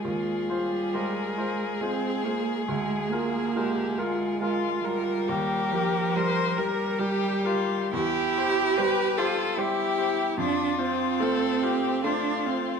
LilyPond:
<<
  \new Staff \with { instrumentName = "Viola" } { \time 3/4 \key ees \major \tempo 4 = 70 f'4 bes'4 aes'4 | aes'4 g'8 f'8 f'4 | bes'2 g'4 | \key c \major r4 c''4 c''4 |
r4 a'4 a'4 | }
  \new Staff \with { instrumentName = "Grand piano" } { \time 3/4 \key ees \major ees,8 <f' c''>8 <aes f' c''>8 <f' c''>8 <aes f' c''>8 <f' c''>8 | d,8 <f' bes'>8 <aes f' bes'>8 <f' bes'>8 <aes f' bes'>8 <f' bes'>8 | ees,8 <g' bes'>8 <g g' bes'>8 <g' bes'>8 <g g' bes'>8 <g' bes'>8 | \key c \major e,8 <g' c''>8 <g g' c''>8 <g' c''>8 <g g' c''>8 <g' c''>8 |
f,8 <f' c''>8 <a f' c''>8 <f' c''>8 <a f' c''>8 <f' c''>8 | }
  \new Staff \with { instrumentName = "Violin" } { \time 3/4 \key ees \major aes'2.~ | aes'2 f'8 bes'8 | g'4 c''8 bes'8 g'8 f'8 | \key c \major e'4 b'8 a'8 g'4 |
f'4 a'8 g'8 f'4 | }
  \new Staff \with { instrumentName = "Cello" } { \time 3/4 \key ees \major aes8 g4 aes8 c'8 bes8 | aes8 bes4 aes4 g8~ | g8 f4 g4. | \key c \major g'4. f'8 e'4 |
d'8 c'4. d'8 c'8 | }
>>